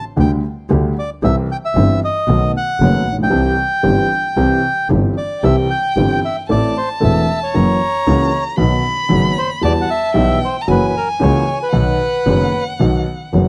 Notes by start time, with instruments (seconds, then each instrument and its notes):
0.16 upright piano D2 D3 G3 A3 G4, double bass D2, bandoneon G5
0.70 double bass D2, upright piano D2 D3 G3 A3 G4
0.99 bandoneon D5
1.23 double bass C2, upright piano C2 C3 E3 G3 C4 G4, bandoneon E5
1.52 bandoneon G5
1.65 bandoneon E5
1.75 double bass G1, upright piano G1 G2 E3 G3 C4 G4
2.04 bandoneon D#5
2.28 double bass B1, upright piano B1 B2 D#3 A3 B3 F#4
2.57 bandoneon F#5
2.80 double bass F#1, upright piano F#1 F#2 D#3 A3 B3 F#4
3.05 double bass A#1
3.13 upright piano A1
3.18 upright piano A#1
3.23 upright piano B1, bandoneon G5
3.30 upright piano C2 C3 E3 G3 C4 G4, double bass C2
3.83 upright piano G1 G2 E3 G3 C4 G4, double bass G1
4.36 upright piano C2 C3 E3 G3 C4 G4, double bass C2
4.90 double bass G1, upright piano G1 G2 E3 G3 C4 G4
5.17 bandoneon D5
5.42 double bass C2, upright piano C2 C3 E3 G3 C4 G4, bandoneon E5, violin G5
5.70 bandoneon G5
5.97 double bass G1, upright piano G1 G2 E3 G3 C4 G4
6.25 bandoneon E5
6.49 upright piano A1 A2 E3 A3 C4 A4, double bass A1, bandoneon D5, violin A5
6.77 bandoneon C5
7.00 upright piano E1 E2 E3 A3 C4 A4, double bass E1, bandoneon E5
7.43 bandoneon C#5
7.54 double bass F#1, upright piano F#2 E3 F#3 A#3 C#4 F#4, violin A#5
8.06 upright piano C#2 C#3 E3 A#3 C#4 F#4, double bass C#2
8.57 upright piano B1 B2 D#3 F#3 B3 F#4, double bass B1, violin B5
9.09 upright piano F#1 F#2 D#3 F#3 B3 F#4, double bass F#1
9.38 bandoneon C5
9.61 upright piano E2 E3 G3 B3 F#4, double bass E2, bandoneon D5, violin A5
9.81 bandoneon F#5
9.90 bandoneon E5
10.14 upright piano B1 B2 E3 G3 B3 F#4, double bass B1, violin G5
10.45 bandoneon C5
10.61 violin A#5
10.67 double bass F#1, upright piano F#2 E3 F#3 A#3 C#4 F#4, bandoneon B4, violin G#5
10.88 bandoneon B4
10.97 bandoneon A#4
11.19 upright piano C#2 C#3 E3 A#3 C#4 F#4, double bass C#2, bandoneon C#5
11.63 bandoneon B4
11.73 upright piano B1 B2 D#3 F#3 B3 F#4, double bass B1, violin F#5
12.26 double bass F#1, upright piano F#1 F#2 D#3 F#3 B3 F#4
12.80 upright piano B1 B2 D#3 F#3 B3 F#4, double bass B1
13.33 upright piano F#1 F#2 D#3 F#3 B3 F#4, double bass F#1